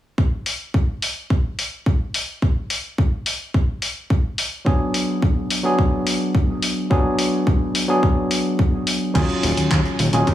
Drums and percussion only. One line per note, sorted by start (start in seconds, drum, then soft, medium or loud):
0.18 kick loud
0.46 open hi-hat medium
0.74 kick loud
1.02 open hi-hat medium
1.30 kick loud
1.59 open hi-hat medium
1.86 kick loud
2.14 open hi-hat medium
2.42 kick loud
2.70 open hi-hat loud
2.98 kick loud
3.26 open hi-hat loud
3.54 kick loud
3.82 open hi-hat medium
4.10 kick loud
4.38 open hi-hat loud
4.66 kick loud
4.94 open hi-hat loud
5.22 kick loud
5.50 open hi-hat loud
5.79 kick loud
6.07 open hi-hat loud
6.35 kick loud
6.62 open hi-hat loud
6.91 kick loud
7.19 open hi-hat loud
7.47 kick loud
7.75 open hi-hat loud
8.03 kick loud
8.31 open hi-hat loud
8.59 kick loud
8.87 open hi-hat loud
9.15 kick loud
9.15 closed hi-hat medium
9.15 crash medium
9.30 closed hi-hat soft
9.43 open hi-hat loud
9.57 closed hi-hat soft
9.71 kick loud
9.71 clap loud
9.71 closed hi-hat medium
9.85 closed hi-hat soft
9.99 open hi-hat loud
10.13 closed hi-hat medium
10.27 kick loud
10.27 closed hi-hat medium